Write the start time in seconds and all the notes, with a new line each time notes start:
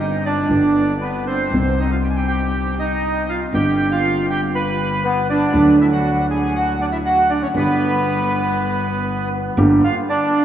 Already playing: G1 G2 D#3 G3 C4 G4
0.00 D#4 D#5
0.25 D4 D5
0.48 G1 G2 D3 G3 B3
0.52 G4
1.01 B3 B4
1.26 C4 C5
1.51 C2 C3 D#3 G3 C4
1.55 G4
1.79 D#4 D#5
1.91 F4 F5
2.04 G4 G5
2.10 G#5
2.16 G4 G5
2.28 G4 G5
2.79 D#4 D#5
3.29 F4 F5
3.52 G1 G2 D3 G3 B3 G4 G5
3.91 F4 F5
4.30 G4 G5
4.55 B4 B5
5.04 B3 B4
5.30 D4 D5
5.53 D2 D3 F#3 A3 F#4
5.81 E4 E5
5.93 F#4 F#5
6.30 G#4 G#5
6.43 G#4 G#5
6.56 F#4 F#5
6.81 D4 D5
6.92 E4 E5
7.05 F#4 F#5
7.30 D4 D5
7.42 C#4 C#5
7.53 G1 G2 D3 G3 B3 B4
7.57 G4
9.57 G1 G2 D3 G3 A#3 G4
9.84 F4 F5
10.09 D4 D5